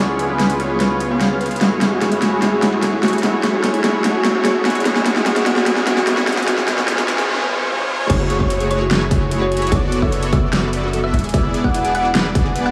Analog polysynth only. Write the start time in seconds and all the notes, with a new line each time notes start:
0.00 B3 C#4 F4 G#4 C#5
0.29 B3 C#4 F4 G#4 B4
0.60 B3 C#4 F4 G#4 C#5
1.10 B3 C#4 F4 G#4 F5
1.61 A3 E4 F#4 G#4 C#5
1.91 A3 E4 F#4 G#4 C#5
2.22 A3 E4 F#4 G#4 C#5
2.42 A3 E4 F#4 G#4 C#5
2.73 A3 E4 F#4 G#4 C#5
3.03 A3 E4 F#4 G#4 C#5
3.23 A3 E4 F#4 G#4 C#5
3.53 A3 E4 F#4 G#4 C#5
3.84 A3 E4 F#4 G#4 C#5
4.04 A3 E4 F#4 G#4 C#5
4.35 A3 E4 F#4 G#4 C#5
4.65 G#3 E4 F#4 G#4 C#5
4.85 G#3 E4 F#4 G#4 C#5
5.16 G#3 E4 F#4 G#4 C#5
5.26 G#3 E4 F#4 G#4 C#5
5.56 G#3 E4 F#4 G#4 C#5
5.67 G#3 E4 F#4 G#4 C#5
5.97 G#3 E4 F#4 G#4 C#5
6.07 G#3 E4 F#4 G#4 C#5
6.37 G#3 E4 F#4 G#4 C#5
6.47 G#3 F4 G#4 C#5
6.68 G#3 F4 G#4 C#5
6.88 G#3 F4 G#4 C#5
7.08 G#3 F4 G#4 C#5
7.29 G#3 F4 G#4 C#5
7.49 G#3 F4 G#4 C#5
7.69 G#3 F4 G#4 C#5
7.89 G#3 F4 G#4 C#5
8.10 A3 E4 F#4 G#4 C#5
8.40 A3 E4 F#4 G#4 C#5
8.71 A3 E4 F#4 G#4 C#5
9.72 B3 D4 F#4 A4 D5
10.02 B3 D4 F#4 A4 C#5
10.33 B3 D4 F#4 A4 D5
10.83 B3 D4 F#4 A4 E5
11.34 B3 D4 E4 G#4 D5
11.64 B3 D4 E4 G#4 D5
11.95 B3 D4 E4 G#4 D5